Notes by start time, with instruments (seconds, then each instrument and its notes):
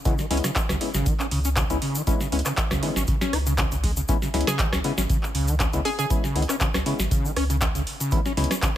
0.05 acid bass C#3, synth stab G#3 B3 C#4 E4, kick, closed hi-hat, shaker
0.18 acid bass D#3, snare, shaker
0.31 sub bass C#2, synth stab G#3 B3 C#4 E4, acid bass C#4, snare, open hi-hat
0.37 closed hi-hat
0.44 acid bass C#3, cross-stick, snare, closed hi-hat, shaker
0.56 acid bass C#4, kick, clap, closed hi-hat, shaker
0.69 sub bass C#2, acid bass C#3, cross-stick, snare, shaker
0.81 synth stab G#3 B3 C#4 E4, open hi-hat
0.94 sub bass G#1, acid bass C#3, snare, shaker
1.06 acid bass D#3, kick, closed hi-hat, shaker
1.20 acid bass C#4, clap, shaker
1.31 sub bass C#2, acid bass C#3, open hi-hat
1.45 acid bass C#4, closed hi-hat, shaker
1.56 acid bass C#3, kick, clap, closed hi-hat, shaker
1.70 sub bass C#2, synth stab G#3 B3 C#4 E4, closed hi-hat, shaker
1.82 acid bass C#3, open hi-hat
1.95 acid bass D#3, closed hi-hat, shaker
2.07 synth stab G#3 B3 C#4 E4, acid bass C#4, kick, closed hi-hat, shaker
2.20 acid bass C#3, snare, shaker
2.32 sub bass C#2, synth stab G#3 B3 C#4 E4, acid bass C#4, open hi-hat
2.39 closed hi-hat
2.45 acid bass C#3, cross-stick, clap, closed hi-hat, shaker
2.57 kick, clap, closed hi-hat, shaker
2.71 sub bass C#2, acid bass C#3, cross-stick, snare, shaker
2.83 acid bass D#3, synth stab G#3 B3 C#4 E4, open hi-hat
2.96 sub bass G#1, acid bass C#4, snare, shaker
3.07 acid bass C#3, kick, closed hi-hat, shaker
3.21 acid bass C#4, snare, shaker
3.33 sub bass C#2, acid bass E4, cross-stick, open hi-hat
3.46 acid bass C#3, closed hi-hat, shaker
3.58 acid bass C#3, kick, clap, closed hi-hat, shaker
3.72 sub bass C#2, acid bass C#3, closed hi-hat, shaker
3.83 acid bass G#3, kick, open hi-hat
3.97 acid bass C#3, closed hi-hat, shaker
4.08 synth stab G#3 B3 C#4 E4, acid bass C#4, kick, closed hi-hat, shaker
4.22 acid bass C#3, snare, shaker
4.34 sub bass C#2, synth stab G#3 B3 C#4 E4, snare, open hi-hat
4.41 closed hi-hat
4.47 acid bass C#3, synth pluck G#4, cross-stick, snare, closed hi-hat, shaker
4.59 acid bass D#3, kick, clap, closed hi-hat, shaker
4.73 sub bass C#2, acid bass C#4, cross-stick, snare, shaker
4.84 acid bass C#3, synth stab G#3 B3 C#4 E4, open hi-hat
4.98 sub bass G#1, acid bass C#4, snare, shaker
5.10 acid bass C#3, kick, closed hi-hat, shaker
5.23 clap, shaker
5.35 sub bass C#2, acid bass C#3, open hi-hat
5.48 acid bass D#3, closed hi-hat, shaker
5.60 acid bass C#4, kick, clap, closed hi-hat, shaker
5.73 sub bass C#2, acid bass C#3, synth stab G#3 B3 C#4 E4, closed hi-hat, shaker
5.85 acid bass C#4, synth pluck G#4, open hi-hat
5.99 acid bass C#3, synth pluck G#4, closed hi-hat, shaker
6.10 synth stab G#3 B3 C#4 E4, kick, closed hi-hat, shaker
6.24 acid bass C#3, snare, shaker
6.36 sub bass C#2, acid bass D#3, synth stab G#3 B3 C#4 E4, open hi-hat
6.42 closed hi-hat
6.49 acid bass C#4, cross-stick, clap, closed hi-hat, shaker
6.60 acid bass C#3, kick, clap, closed hi-hat, shaker
6.74 sub bass C#2, acid bass C#4, cross-stick, snare, shaker
6.86 acid bass C#3, synth stab G#3 B3 C#4 E4, open hi-hat
6.99 sub bass G#1, snare, shaker
7.11 acid bass C#3, kick, closed hi-hat, shaker
7.25 acid bass D#3, shaker
7.36 sub bass C#2, acid bass C#4, cross-stick, open hi-hat
7.50 acid bass C#3, closed hi-hat, shaker
7.61 acid bass C#4, kick, clap, closed hi-hat, shaker
7.75 sub bass C#2, acid bass C#3, closed hi-hat, shaker
7.87 open hi-hat
8.00 acid bass C#3, closed hi-hat, shaker
8.11 acid bass D#3, synth stab G#3 B3 C#4 E4, kick, closed hi-hat, shaker
8.25 acid bass C#4, snare, shaker
8.37 sub bass C#2, acid bass C#3, synth stab G#3 B3 C#4 E4, snare, open hi-hat
8.44 closed hi-hat
8.51 acid bass C#4, cross-stick, snare, closed hi-hat, shaker
8.62 acid bass C#3, kick, clap, closed hi-hat, shaker